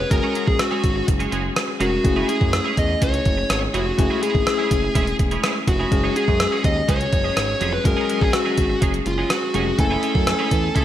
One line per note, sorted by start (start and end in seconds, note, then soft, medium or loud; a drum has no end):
0.00 0.10 G#3 medium
0.00 0.11 C#4 soft
0.00 0.12 F#4 medium
0.00 0.12 G#4 medium
0.00 0.11 B4 medium
0.10 0.20 F#1 loud
0.10 1.77 G#3 medium
0.10 1.77 C#4 medium
0.10 1.77 F#4 medium
0.10 1.78 G#4 medium
0.10 0.48 A#4 medium
0.10 muted clean electric guitar stroke soft
0.10 kick medium
0.10 closed hi-hat medium
0.23 0.34 G#3 medium
0.23 0.35 C#4 medium
0.23 0.35 F#4 medium
0.23 0.35 G#4 medium
0.35 0.47 G#3 medium
0.35 0.47 C#4 medium
0.35 0.47 F#4 medium
0.35 0.46 G#4 medium
0.35 closed hi-hat medium
0.47 0.57 A#1 medium
0.47 0.59 G#4 medium
0.47 muted clean electric guitar stroke soft
0.47 kick medium
0.59 1.05 F#4 medium
0.59 muted clean electric guitar stroke soft
0.59 cross-stick loud
0.59 closed hi-hat medium
0.71 0.82 G#3 medium
0.71 0.82 C#4 medium
0.71 0.83 F#4 medium
0.71 0.83 G#4 medium
0.83 1.02 G#1 medium
0.83 muted clean electric guitar stroke soft
0.83 kick medium
0.83 closed hi-hat medium
0.95 muted clean electric guitar stroke soft
1.08 1.26 F#1 medium
1.08 muted clean electric guitar stroke soft
1.08 kick medium
1.08 closed hi-hat medium
1.19 1.30 G#3 soft
1.19 1.31 C#4 soft
1.19 1.32 F#4 soft
1.19 1.31 G#4 medium
1.19 closed hi-hat soft
1.32 1.50 F#1 medium
1.32 1.47 G#3 medium
1.32 1.44 C#4 medium
1.32 1.43 F#4 medium
1.32 1.43 G#4 medium
1.32 closed hi-hat medium
1.44 muted clean electric guitar stroke soft
1.56 muted clean electric guitar stroke soft
1.56 cross-stick loud
1.56 closed hi-hat medium
1.68 muted clean electric guitar stroke soft
1.80 1.99 F1 medium
1.80 1.95 G#3 medium
1.80 2.05 G#3 soft
1.80 1.92 C#4 medium
1.80 2.03 C#4 soft
1.80 1.91 F#4 medium
1.80 2.05 F#4 soft
1.80 2.29 F#4 medium
1.80 1.91 G#4 medium
1.80 2.05 A#4 medium
1.80 closed hi-hat medium
1.92 muted clean electric guitar stroke soft
2.03 2.23 F#1 loud
2.03 3.94 A3 medium
2.03 3.94 C#4 medium
2.03 3.95 E4 medium
2.03 3.95 G#4 medium
2.03 muted clean electric guitar stroke soft
2.03 kick medium
2.03 closed hi-hat medium
2.16 2.27 G#3 medium
2.16 2.28 C#4 medium
2.16 2.28 E4 medium
2.16 2.29 G#4 medium
2.28 2.40 G#3 medium
2.28 2.41 C#4 medium
2.28 2.40 E4 medium
2.28 2.79 G#4 medium
2.28 2.39 G#4 medium
2.28 closed hi-hat medium
2.41 2.59 F#2 medium
2.41 muted clean electric guitar stroke soft
2.41 kick medium
2.53 muted clean electric guitar stroke soft
2.53 cross-stick loud
2.53 closed hi-hat medium
2.64 2.76 G#3 medium
2.64 2.76 C#4 medium
2.64 2.76 E4 medium
2.64 2.77 G#4 medium
2.77 2.96 E2 medium
2.77 3.03 D#5 medium
2.77 muted clean electric guitar stroke soft
2.77 kick medium
2.77 closed hi-hat medium
2.89 muted clean electric guitar stroke soft
3.01 3.20 C#2 medium
3.01 3.49 C#5 medium
3.01 muted clean electric guitar stroke soft
3.01 kick medium
3.01 closed hi-hat medium
3.13 muted clean electric guitar stroke soft
3.13 closed hi-hat soft
3.25 3.44 F#1 medium
3.25 kick medium
3.25 closed hi-hat medium
3.37 muted clean electric guitar stroke soft
3.50 3.68 G#1 medium
3.50 3.57 C#5 medium
3.50 muted clean electric guitar stroke soft
3.50 cross-stick medium
3.50 closed hi-hat medium
3.62 muted clean electric guitar stroke soft
3.74 3.92 F1 medium
3.74 3.89 G#3 medium
3.74 3.86 C#4 medium
3.74 3.85 E4 medium
3.74 4.19 F#4 medium
3.74 3.85 G#4 medium
3.74 closed hi-hat medium
3.86 muted clean electric guitar stroke soft
3.97 4.07 F#1 loud
3.97 5.87 A3 medium
3.97 5.88 C#4 medium
3.97 5.88 E4 soft
3.97 5.89 G#4 medium
3.97 muted clean electric guitar stroke soft
3.97 kick medium
3.97 closed hi-hat medium
4.10 4.21 G#3 medium
4.10 4.22 C#4 medium
4.10 4.22 E4 medium
4.10 4.22 G#4 medium
4.22 4.34 G#3 medium
4.22 4.34 C#4 medium
4.22 4.34 E4 medium
4.22 5.15 G#4 medium
4.22 4.33 G#4 medium
4.22 closed hi-hat medium
4.35 4.44 G#1 medium
4.35 muted clean electric guitar stroke soft
4.35 kick medium
4.47 muted clean electric guitar stroke soft
4.47 cross-stick loud
4.47 closed hi-hat medium
4.59 4.69 G#3 medium
4.59 4.70 C#4 medium
4.59 4.70 E4 medium
4.59 4.71 G#4 medium
4.71 4.89 F#1 medium
4.71 muted clean electric guitar stroke soft
4.71 kick medium
4.71 closed hi-hat medium
4.83 muted clean electric guitar stroke soft
4.95 5.13 E1 medium
4.95 5.10 G#3 medium
4.95 5.07 C#4 medium
4.95 5.06 E4 medium
4.95 5.06 G#4 medium
4.95 kick medium
4.95 closed hi-hat medium
5.07 muted clean electric guitar stroke soft
5.07 closed hi-hat soft
5.19 5.38 E1 medium
5.19 muted clean electric guitar stroke soft
5.19 kick medium
5.19 closed hi-hat medium
5.31 5.42 G#3 soft
5.31 5.42 C#4 soft
5.31 5.43 E4 soft
5.31 5.43 G#4 medium
5.31 closed hi-hat soft
5.43 5.58 G#3 medium
5.43 5.55 C#4 medium
5.43 5.55 E4 medium
5.43 5.54 G#4 medium
5.43 cross-stick medium
5.43 closed hi-hat medium
5.55 muted clean electric guitar stroke soft
5.67 5.86 F1 medium
5.67 6.17 F#4 medium
5.67 muted clean electric guitar stroke soft
5.67 kick medium
5.67 closed hi-hat medium
5.79 5.91 G#3 soft
5.79 5.91 C#4 medium
5.79 5.91 E4 soft
5.79 5.91 G#4 medium
5.91 6.10 F#1 loud
5.91 7.81 G#3 medium
5.91 7.81 C#4 medium
5.91 7.82 F#4 medium
5.91 7.82 G#4 medium
5.91 muted clean electric guitar stroke soft
5.91 kick medium
5.91 closed hi-hat medium
6.03 6.14 F#3 medium
6.03 6.15 G#3 medium
6.03 6.15 C#4 medium
6.03 6.16 G#4 medium
6.16 6.27 F#3 medium
6.16 6.28 G#3 medium
6.16 6.27 C#4 medium
6.16 6.61 G#4 medium
6.16 6.27 G#4 medium
6.16 closed hi-hat medium
6.28 6.46 F#2 medium
6.28 muted clean electric guitar stroke soft
6.28 kick medium
6.40 muted clean electric guitar stroke soft
6.40 cross-stick loud
6.40 closed hi-hat medium
6.52 6.63 F#3 medium
6.52 6.63 G#3 medium
6.52 6.64 C#4 medium
6.52 6.64 G#4 medium
6.64 6.82 D#2 medium
6.64 6.90 D#5 medium
6.64 muted clean electric guitar stroke soft
6.64 kick medium
6.64 closed hi-hat medium
6.76 muted clean electric guitar stroke soft
6.88 7.07 C#2 medium
6.88 7.03 F#3 medium
6.88 7.00 G#3 medium
6.88 6.99 C#4 medium
6.88 6.99 G#4 medium
6.88 7.36 C#5 medium
6.88 kick medium
6.88 closed hi-hat medium
7.00 muted clean electric guitar stroke soft
7.00 closed hi-hat soft
7.12 7.31 F#1 medium
7.12 muted clean electric guitar stroke soft
7.12 kick medium
7.12 closed hi-hat medium
7.24 7.35 F#3 soft
7.24 7.36 G#3 medium
7.24 7.36 C#4 medium
7.24 7.36 G#4 medium
7.37 7.55 G#1 medium
7.37 7.71 C#5 medium
7.37 cross-stick medium
7.37 closed hi-hat medium
7.49 muted clean electric guitar stroke soft
7.61 7.79 F1 medium
7.61 7.76 F#3 medium
7.61 7.72 G#3 medium
7.61 7.72 C#4 medium
7.61 7.71 G#4 medium
7.61 closed hi-hat medium
7.73 7.85 B4 medium
7.73 muted clean electric guitar stroke soft
7.84 7.94 F#1 loud
7.84 9.51 G#3 medium
7.84 9.51 C#4 medium
7.84 9.51 F#4 medium
7.84 9.52 G#4 medium
7.84 8.23 A#4 medium
7.84 muted clean electric guitar stroke soft
7.84 kick medium
7.84 closed hi-hat medium
7.97 8.08 F#3 medium
7.97 8.08 G#3 medium
7.97 8.09 C#4 medium
7.97 8.09 G#4 medium
8.09 8.21 F#3 medium
8.09 8.21 G#3 medium
8.09 8.21 C#4 medium
8.09 8.20 G#4 medium
8.09 closed hi-hat medium
8.21 8.31 A#1 medium
8.21 8.33 G#4 medium
8.21 muted clean electric guitar stroke soft
8.21 kick medium
8.33 8.79 F#4 medium
8.33 muted clean electric guitar stroke soft
8.33 cross-stick loud
8.33 closed hi-hat medium
8.45 8.56 F#3 medium
8.45 8.57 G#3 medium
8.45 8.57 C#4 medium
8.45 8.57 G#4 medium
8.57 8.76 G#1 medium
8.57 muted clean electric guitar stroke soft
8.57 kick medium
8.57 closed hi-hat medium
8.69 muted clean electric guitar stroke soft
8.81 9.00 F#1 medium
8.81 8.97 F#3 medium
8.81 8.94 G#3 medium
8.81 8.93 C#4 medium
8.81 8.93 G#4 medium
8.81 kick medium
8.81 closed hi-hat medium
8.94 muted clean electric guitar stroke soft
8.94 closed hi-hat soft
9.06 9.24 F#1 medium
9.06 9.31 F4 medium
9.06 muted clean electric guitar stroke soft
9.06 closed hi-hat medium
9.18 9.29 F#3 soft
9.18 9.29 G#3 medium
9.18 9.30 C#4 medium
9.18 9.30 G#4 medium
9.30 9.79 F#4 medium
9.30 muted clean electric guitar stroke soft
9.30 cross-stick loud
9.30 closed hi-hat medium
9.42 muted clean electric guitar stroke soft
9.54 9.73 F1 medium
9.54 9.69 F#3 medium
9.54 9.79 G#3 soft
9.54 9.66 G#3 medium
9.54 9.77 C#4 soft
9.54 9.66 C#4 medium
9.54 9.79 F#4 soft
9.54 9.79 G#4 medium
9.54 9.65 G#4 medium
9.54 closed hi-hat medium
9.67 muted clean electric guitar stroke soft
9.78 9.97 F#1 loud
9.78 10.85 A3 medium
9.78 10.85 C#4 medium
9.78 10.85 E4 medium
9.78 10.75 A4 loud
9.78 10.85 G#5 medium
9.78 muted clean electric guitar stroke soft
9.78 kick loud
9.78 closed hi-hat medium
9.90 10.01 G#3 medium
9.90 10.02 C#4 medium
9.90 10.02 E4 medium
9.90 10.03 G#4 medium
10.03 10.14 G#3 medium
10.03 10.15 C#4 medium
10.03 10.14 E4 medium
10.03 10.14 G#4 medium
10.03 closed hi-hat medium
10.15 10.33 F#2 medium
10.15 muted clean electric guitar stroke soft
10.15 kick medium
10.27 muted clean electric guitar stroke soft
10.27 cross-stick loud
10.27 closed hi-hat medium
10.39 10.50 G#3 medium
10.39 10.50 C#4 medium
10.39 10.50 E4 medium
10.39 10.51 G#4 medium
10.51 10.70 E2 medium
10.51 muted clean electric guitar stroke soft
10.51 kick medium
10.51 closed hi-hat medium
10.63 muted clean electric guitar stroke soft
10.75 10.85 C#2 medium
10.75 10.85 G#3 medium
10.75 10.85 C#4 medium
10.75 10.85 E4 medium
10.75 10.85 G#4 medium
10.75 10.85 A4 medium
10.75 kick medium
10.75 closed hi-hat medium